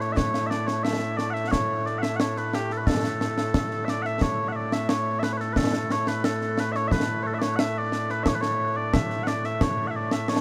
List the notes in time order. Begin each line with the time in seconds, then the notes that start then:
Already playing: A2 A3
0.01 C#5, snare
0.12 E5
0.17 C#5, concert bass drum, snare
0.34 snare
0.47 D5 E5
0.51 snare
0.67 C#5, snare
0.83 E5, snare
1.02 snare
1.17 D5, snare
1.30 E5 F#5
1.36 snare
1.48 C#5 F#5
1.53 concert bass drum, snare
1.86 D5, snare
1.98 E5 F#5
2.03 snare
2.16 F#5, snare
2.20 C#5
2.37 B4, snare
2.53 G4, snare
2.70 A4, snare
2.77 B4
2.87 A4, concert bass drum, snare
3.04 snare
3.21 snare
3.38 snare
3.54 concert bass drum, snare
3.71 snare
3.85 E5, snare
3.89 D5
4.02 E5 F#5, snare
4.21 C#5, concert bass drum, snare
4.48 E5 F#5
4.56 D5
4.72 E5, snare
4.89 C#5, snare
5.19 B4 E5, snare
5.33 C#5
5.37 A4 B4, snare
5.53 B4, concert bass drum, snare
5.57 A4
5.73 snare
5.91 C#5, snare
6.07 B4, snare
6.24 A4, snare
6.41 snare
6.58 B4, snare
6.72 C#5 E5, snare
6.88 B4 E5, concert bass drum, snare
7.23 A4 C#5
7.34 E5
7.39 D5, snare
7.43 C#5
7.56 E5 F#5, snare
7.78 D5
7.92 snare
8.09 B4, snare
8.23 E5, concert bass drum, snare
8.28 C#5
8.35 B4
8.41 C#5, snare
8.77 D5
8.93 E5, concert bass drum, snare
9.10 snare
9.23 D5 F#5, snare
9.44 E5, snare
9.61 C#5, concert bass drum, snare
9.87 E5 F#5
9.96 D5
10.11 E5, snare
10.28 C#5, snare